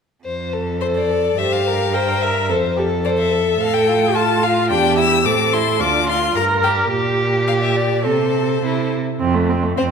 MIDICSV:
0, 0, Header, 1, 5, 480
1, 0, Start_track
1, 0, Key_signature, -1, "major"
1, 0, Tempo, 563380
1, 210, Time_signature, 2, 2, 24, 8
1, 2129, Tempo, 551978
1, 5969, Tempo, 571973
1, 8483, End_track
2, 0, Start_track
2, 0, Title_t, "Violin"
2, 0, Program_c, 0, 40
2, 690, Note_on_c, 0, 72, 52
2, 739, Note_off_c, 0, 72, 0
2, 815, Note_on_c, 0, 74, 55
2, 1177, Note_on_c, 0, 76, 62
2, 1190, Note_off_c, 0, 74, 0
2, 1295, Note_on_c, 0, 77, 60
2, 1308, Note_off_c, 0, 76, 0
2, 1651, Note_on_c, 0, 79, 56
2, 1663, Note_off_c, 0, 77, 0
2, 1888, Note_on_c, 0, 76, 54
2, 1901, Note_off_c, 0, 79, 0
2, 2127, Note_off_c, 0, 76, 0
2, 2606, Note_on_c, 0, 74, 61
2, 2655, Note_off_c, 0, 74, 0
2, 2722, Note_on_c, 0, 76, 56
2, 3089, Note_on_c, 0, 77, 73
2, 3102, Note_off_c, 0, 76, 0
2, 3201, Note_on_c, 0, 79, 69
2, 3214, Note_off_c, 0, 77, 0
2, 3569, Note_on_c, 0, 81, 74
2, 3582, Note_off_c, 0, 79, 0
2, 3808, Note_on_c, 0, 77, 64
2, 3821, Note_off_c, 0, 81, 0
2, 4036, Note_off_c, 0, 77, 0
2, 4041, Note_on_c, 0, 79, 73
2, 4280, Note_off_c, 0, 79, 0
2, 4284, Note_on_c, 0, 88, 76
2, 4529, Note_on_c, 0, 86, 69
2, 4542, Note_off_c, 0, 88, 0
2, 4767, Note_on_c, 0, 84, 67
2, 4780, Note_off_c, 0, 86, 0
2, 5002, Note_on_c, 0, 86, 71
2, 5015, Note_off_c, 0, 84, 0
2, 5244, Note_off_c, 0, 86, 0
2, 5252, Note_on_c, 0, 84, 69
2, 5482, Note_off_c, 0, 84, 0
2, 5487, Note_on_c, 0, 82, 60
2, 5557, Note_off_c, 0, 82, 0
2, 5726, Note_on_c, 0, 79, 58
2, 5796, Note_off_c, 0, 79, 0
2, 6441, Note_on_c, 0, 77, 56
2, 6489, Note_off_c, 0, 77, 0
2, 6567, Note_on_c, 0, 76, 48
2, 6677, Note_on_c, 0, 74, 54
2, 6690, Note_off_c, 0, 76, 0
2, 6922, Note_on_c, 0, 72, 51
2, 6935, Note_off_c, 0, 74, 0
2, 7653, Note_off_c, 0, 72, 0
2, 8371, Note_on_c, 0, 72, 57
2, 8418, Note_off_c, 0, 72, 0
2, 8483, End_track
3, 0, Start_track
3, 0, Title_t, "Violin"
3, 0, Program_c, 1, 40
3, 213, Note_on_c, 1, 72, 35
3, 451, Note_on_c, 1, 69, 33
3, 464, Note_off_c, 1, 72, 0
3, 693, Note_on_c, 1, 72, 34
3, 706, Note_off_c, 1, 69, 0
3, 945, Note_on_c, 1, 69, 33
3, 957, Note_off_c, 1, 72, 0
3, 1176, Note_off_c, 1, 69, 0
3, 1181, Note_on_c, 1, 72, 38
3, 1426, Note_on_c, 1, 70, 39
3, 1439, Note_off_c, 1, 72, 0
3, 1662, Note_on_c, 1, 72, 35
3, 1675, Note_off_c, 1, 70, 0
3, 1907, Note_on_c, 1, 70, 38
3, 1919, Note_off_c, 1, 72, 0
3, 2128, Note_off_c, 1, 70, 0
3, 2133, Note_on_c, 1, 72, 42
3, 2374, Note_on_c, 1, 69, 42
3, 2387, Note_off_c, 1, 72, 0
3, 2611, Note_on_c, 1, 72, 37
3, 2624, Note_off_c, 1, 69, 0
3, 2850, Note_on_c, 1, 69, 40
3, 2863, Note_off_c, 1, 72, 0
3, 3082, Note_off_c, 1, 69, 0
3, 3087, Note_on_c, 1, 69, 44
3, 3328, Note_on_c, 1, 65, 43
3, 3341, Note_off_c, 1, 69, 0
3, 3566, Note_on_c, 1, 69, 43
3, 3579, Note_off_c, 1, 65, 0
3, 3814, Note_on_c, 1, 65, 42
3, 3827, Note_off_c, 1, 69, 0
3, 4043, Note_off_c, 1, 65, 0
3, 4048, Note_on_c, 1, 62, 49
3, 4283, Note_on_c, 1, 64, 48
3, 4296, Note_off_c, 1, 62, 0
3, 4518, Note_off_c, 1, 64, 0
3, 4523, Note_on_c, 1, 60, 38
3, 4768, Note_on_c, 1, 64, 40
3, 4781, Note_off_c, 1, 60, 0
3, 5004, Note_off_c, 1, 64, 0
3, 5009, Note_on_c, 1, 62, 41
3, 5248, Note_on_c, 1, 65, 43
3, 5261, Note_off_c, 1, 62, 0
3, 5477, Note_off_c, 1, 65, 0
3, 5482, Note_on_c, 1, 70, 35
3, 5731, Note_on_c, 1, 67, 40
3, 5744, Note_off_c, 1, 70, 0
3, 5966, Note_off_c, 1, 67, 0
3, 5971, Note_on_c, 1, 67, 50
3, 6893, Note_off_c, 1, 67, 0
3, 6928, Note_on_c, 1, 69, 35
3, 7403, Note_off_c, 1, 69, 0
3, 7421, Note_on_c, 1, 64, 28
3, 7723, Note_off_c, 1, 64, 0
3, 8374, Note_on_c, 1, 60, 56
3, 8420, Note_off_c, 1, 60, 0
3, 8483, End_track
4, 0, Start_track
4, 0, Title_t, "Viola"
4, 0, Program_c, 2, 41
4, 696, Note_on_c, 2, 69, 43
4, 1141, Note_off_c, 2, 69, 0
4, 1175, Note_on_c, 2, 67, 43
4, 1651, Note_on_c, 2, 70, 47
4, 1664, Note_off_c, 2, 67, 0
4, 2120, Note_off_c, 2, 70, 0
4, 2125, Note_on_c, 2, 69, 52
4, 2195, Note_off_c, 2, 69, 0
4, 2360, Note_on_c, 2, 67, 47
4, 2430, Note_off_c, 2, 67, 0
4, 2605, Note_on_c, 2, 69, 54
4, 3079, Note_off_c, 2, 69, 0
4, 3085, Note_on_c, 2, 69, 61
4, 3567, Note_on_c, 2, 65, 54
4, 3580, Note_off_c, 2, 69, 0
4, 4048, Note_on_c, 2, 67, 55
4, 4061, Note_off_c, 2, 65, 0
4, 4525, Note_on_c, 2, 69, 50
4, 4538, Note_off_c, 2, 67, 0
4, 5002, Note_on_c, 2, 65, 52
4, 5015, Note_off_c, 2, 69, 0
4, 5488, Note_on_c, 2, 70, 54
4, 5501, Note_off_c, 2, 65, 0
4, 5959, Note_off_c, 2, 70, 0
4, 5964, Note_on_c, 2, 67, 53
4, 6903, Note_off_c, 2, 67, 0
4, 6923, Note_on_c, 2, 69, 39
4, 7638, Note_off_c, 2, 69, 0
4, 7889, Note_on_c, 2, 60, 50
4, 8009, Note_on_c, 2, 57, 47
4, 8021, Note_off_c, 2, 60, 0
4, 8133, Note_on_c, 2, 60, 45
4, 8146, Note_off_c, 2, 57, 0
4, 8250, Note_on_c, 2, 57, 44
4, 8262, Note_off_c, 2, 60, 0
4, 8360, Note_off_c, 2, 57, 0
4, 8365, Note_on_c, 2, 60, 45
4, 8483, Note_off_c, 2, 60, 0
4, 8483, End_track
5, 0, Start_track
5, 0, Title_t, "Cello"
5, 0, Program_c, 3, 42
5, 207, Note_on_c, 3, 41, 41
5, 1138, Note_off_c, 3, 41, 0
5, 1171, Note_on_c, 3, 43, 45
5, 2127, Note_on_c, 3, 41, 51
5, 2140, Note_off_c, 3, 43, 0
5, 3085, Note_off_c, 3, 41, 0
5, 3090, Note_on_c, 3, 45, 53
5, 4051, Note_on_c, 3, 40, 61
5, 4064, Note_off_c, 3, 45, 0
5, 4523, Note_on_c, 3, 45, 52
5, 4536, Note_off_c, 3, 40, 0
5, 5002, Note_on_c, 3, 38, 55
5, 5015, Note_off_c, 3, 45, 0
5, 5473, Note_off_c, 3, 38, 0
5, 5479, Note_on_c, 3, 43, 47
5, 5954, Note_off_c, 3, 43, 0
5, 5963, Note_on_c, 3, 46, 49
5, 6922, Note_on_c, 3, 48, 42
5, 6934, Note_off_c, 3, 46, 0
5, 7401, Note_off_c, 3, 48, 0
5, 7406, Note_on_c, 3, 48, 38
5, 7715, Note_off_c, 3, 48, 0
5, 7890, Note_on_c, 3, 41, 68
5, 8312, Note_off_c, 3, 41, 0
5, 8367, Note_on_c, 3, 41, 62
5, 8483, Note_off_c, 3, 41, 0
5, 8483, End_track
0, 0, End_of_file